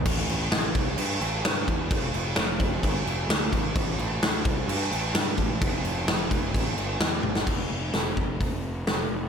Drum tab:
CC |x-x-x-x-x-x-x-x-|x-x-x-x-x-x-x-x-|x-x-x-x-x-x-x-x-|x-x-x-x-x-x-x---|
HH |----------------|----------------|----------------|----------------|
SD |----o-------o---|----o-------o---|----o-------o---|----o-------o--o|
T1 |----------------|----------------|----------------|--------------o-|
BD |o-----o-------o-|o-----o-o-----o-|o-----o-------o-|o-----o-o-------|

CC |x---------------|
HH |----o---o---o---|
SD |----o-------o---|
T1 |----------------|
BD |o-----o-o-------|